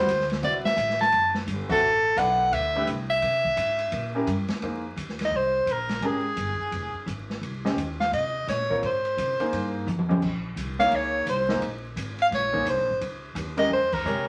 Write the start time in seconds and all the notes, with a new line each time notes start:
Already playing: C5
0.07 D2, hi-hat pedal, ride
0.20 snare
0.30 snare, ride
0.42 C2 C4 F#4 B4 D5 E5, ride
0.64 E5, muted upright bass stroke, snare
0.77 A1, hi-hat pedal, ride
0.90 snare
0.99 A5, snare, ride
1.12 F#1, ride
1.34 snare
1.47 G1, hi-hat pedal, ride
1.69 C4 F#4 A4 B4 E5, kick, crash
1.81 A1
2.16 B1 B3 E4 A4 D5 F#5, hi-hat pedal, ride
2.52 D2 E5, ride
2.76 A3 D4 G4 B4
2.87 C2, hi-hat pedal, ride
3.10 E5
3.22 C3, ride
3.44 kick
3.57 G#2, hi-hat pedal, ride
3.79 ride
3.92 A#2, ride
4.15 C#4 E4 G4 A#4
4.26 G2, hi-hat pedal, ride
4.48 muted upright bass stroke, snare, ride
4.62 F2 A#3 D#4 G#4 C5, ride
4.96 D#2, hi-hat pedal, ride
5.09 snare
5.19 snare, ride
5.25 D#5
5.31 C2
5.36 C5
5.66 A#1, hi-hat pedal, ride
5.72 A#4
5.89 snare, ride
6.01 G#1 G#3 C#4 G4 A#4, ride
6.06 G#4
6.36 G1, hi-hat pedal, ride
6.59 muted upright bass stroke
6.71 F1, ride
6.93 muted upright bass stroke
7.06 G#1, hi-hat pedal, ride
7.30 snare
7.41 C2, ride
7.65 C#4 G4 C5 D#5, snare
7.76 D#2, hi-hat pedal, ride
8.00 F5, snare
8.12 C3 D#5, ride
8.47 A#2 C#5, snare, hi-hat pedal, ride
8.70 C4 F4 A#4 C#5, kick
8.82 G#2, ride
8.86 C5
9.05 ride
9.17 C3, hi-hat pedal, ride
9.39 A#3 D#4 G#4 C5, muted upright bass stroke, ride
9.52 G2, ride
9.87 F2, hi-hat pedal, high tom
9.99 high tom
10.09 C#4 G4 C5 D#5, high tom
10.22 A#1, kick, crash
10.56 C2, hi-hat pedal, ride
10.79 A#3 D#4 G#4 C#5 F5, snare
10.91 C#2, ride
10.96 C#5
11.26 C2 C5, hi-hat pedal, ride
11.49 A#3 D#4 G#4 D#5, snare
11.61 A#1, ride
11.96 G#1, hi-hat pedal, ride
12.19 F5, ride
12.31 A#1 C#5, snare, ride
12.53 A#3 D#4 G#4 C5, kick
12.65 C2, hi-hat pedal, ride
12.69 C5
12.78 A#1
12.89 G#1
13.01 C#2, ride
13.35 D#2, hi-hat pedal, ride
13.57 G#3 C#4 G4 A#4 D#5, ride
13.70 F2 C5
13.92 A#4, kick, crash
14.05 C3 G#3 G4 A#4 C#5, hi-hat pedal